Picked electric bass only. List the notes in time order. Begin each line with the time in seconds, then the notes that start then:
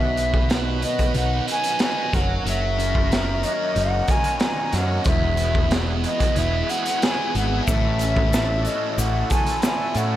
Already playing: B1
1.15 B1
2.13 F#1
2.45 F#1
3.76 F#1
4.73 F#2
5.06 E1
6.37 E1
7.35 G#1
7.67 A1
8.98 A1
9.95 A2